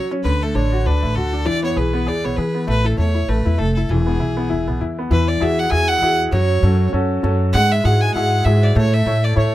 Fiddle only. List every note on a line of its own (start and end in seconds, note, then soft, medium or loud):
0.00 0.12 C#5 loud
0.23 0.44 B4 medium
0.42 0.56 A4 medium
0.55 0.87 C#5 medium
0.86 1.16 B4 medium
1.15 1.47 A4 loud
1.46 1.63 D5 loud
1.64 1.79 C#5 medium
1.77 2.09 B4 medium
2.08 2.26 D5 medium
2.24 2.38 C#5 medium
2.36 2.67 B4 medium
2.69 2.87 B4 loud
2.85 2.98 A4 medium
2.98 3.30 C#5 medium
3.29 3.60 B4 medium
3.58 3.74 A4 medium
3.74 3.91 A4 medium
3.90 4.81 G#4 medium
5.12 5.29 B4 loud
5.28 5.44 D5 medium
5.42 5.60 E5 loud
5.59 5.71 F#5 loud
5.70 5.89 G#5 loud
5.88 6.19 F#5 loud
6.31 6.89 C#5 medium
7.53 7.73 F#5 loud
7.72 7.86 E5 loud
7.85 8.03 F#5 loud
8.01 8.13 G#5 loud
8.14 8.46 F#5 loud
8.45 8.64 E5 loud
8.63 8.76 D5 loud
8.77 8.95 C#5 loud
8.93 9.25 E5 loud
9.24 9.36 D5 medium
9.38 9.55 C#5 medium